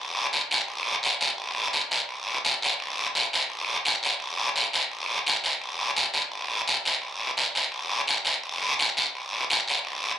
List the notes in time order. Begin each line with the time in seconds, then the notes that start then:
0.33 short guiro
0.51 short guiro
0.68 long guiro
1.03 short guiro
1.21 short guiro
1.38 long guiro
1.73 short guiro
1.91 short guiro
2.09 long guiro
2.45 short guiro
2.62 short guiro
2.80 long guiro
3.15 short guiro
3.33 short guiro
3.50 long guiro
3.85 short guiro
4.03 short guiro
4.20 long guiro
4.56 short guiro
4.73 short guiro
4.91 long guiro
5.26 short guiro
5.44 short guiro
5.62 long guiro
5.96 short guiro
6.14 short guiro
6.32 long guiro
6.67 short guiro
6.85 short guiro
7.02 long guiro
7.37 short guiro
7.55 short guiro
7.72 long guiro
8.07 short guiro
8.25 short guiro
8.43 long guiro
8.79 short guiro
8.97 short guiro
9.15 long guiro
9.50 short guiro
9.68 short guiro
9.85 long guiro